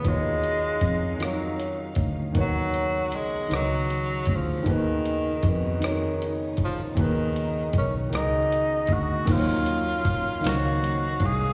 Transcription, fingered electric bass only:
X:1
M:6/8
L:1/8
Q:3/8=52
K:Ebm
V:1 name="Fingered electric bass" clef=bass
E,,2 F,,3 =D,, | E,,2 C,, D,,2 =D,, | E,,2 F,,3 =D,, | E,,2 C,, D,,2 =D,, |
E,,3 D,,2 =C,, |]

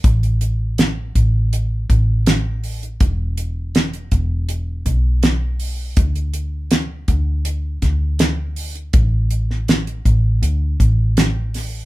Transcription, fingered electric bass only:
X:1
M:4/4
L:1/8
Q:1/4=81
K:Edor
V:1 name="Fingered electric bass" clef=bass
A,,,3 A,,,2 A,,,3 | E,,,3 E,,,2 B,,,3 | D,,3 D,,2 D,,3 | A,,,3 A,,, D,, A,,,3 |]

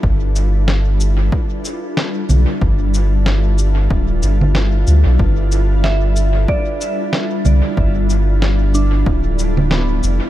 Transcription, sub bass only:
X:1
M:4/4
L:1/16
Q:"Swing 16ths" 1/4=93
K:Gmix
V:1 name="Sub bass" clef=bass
G,,,8 z6 B,,, z | G,,,8 D,,,2 G,,,4 D,, B,,, | G,,,8 z6 C,, z | G,,,8 D,,,6 F,,, z |]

